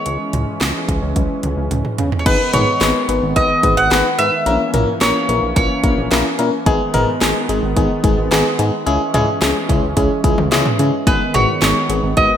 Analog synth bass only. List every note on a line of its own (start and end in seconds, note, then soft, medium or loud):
0.06 0.18 C#2 loud
0.33 0.45 C#2 medium
0.61 0.73 C#2 loud
0.88 1.00 C#2 medium
1.02 1.14 C#2 medium
1.16 1.28 C#2 loud
1.43 1.55 C#2 loud
1.57 1.69 C#2 medium
1.71 1.83 C#2 loud
1.98 2.10 C#3 loud
2.26 2.38 G#1 loud
2.54 2.65 G#1 loud
2.81 2.93 G#1 loud
3.09 3.20 G#1 loud
3.22 3.34 G#1 loud
3.36 3.48 G#1 loud
3.63 3.75 G#1 loud
3.77 3.89 G#1 medium
3.91 4.03 G#1 loud
4.19 4.30 G#2 loud
4.46 4.58 A#1 loud
4.74 4.86 A#1 loud
5.01 5.13 A#1 loud
5.29 5.41 A#1 loud
5.42 5.54 A#1 loud
5.57 5.68 A#1 loud
5.84 5.96 A#1 loud
5.98 6.09 A#1 loud
6.11 6.23 A#1 loud
6.39 6.51 A#2 loud
6.66 6.78 G#1 loud
6.94 7.06 G#1 loud
7.21 7.33 G#1 loud
7.49 7.61 G#1 loud
7.63 7.75 G#1 loud
7.77 7.88 G#1 loud
8.04 8.16 G#1 loud
8.18 8.30 G#1 loud
8.31 8.43 G#1 loud
8.59 8.71 G#2 loud
8.87 8.98 C#2 loud
9.14 9.26 C#2 medium
9.42 9.53 C#2 loud
9.69 9.81 C#2 loud
9.83 9.95 C#2 loud
9.97 10.09 C#2 loud
10.24 10.36 C#2 loud
10.38 10.50 C#2 medium
10.52 10.64 C#2 loud
10.79 10.91 C#3 loud
11.07 11.19 G#1 loud
11.34 11.46 G#1 loud
11.62 11.74 G#1 loud
11.89 12.01 G#1 loud
12.03 12.15 G#1 medium
12.17 12.29 G#1 loud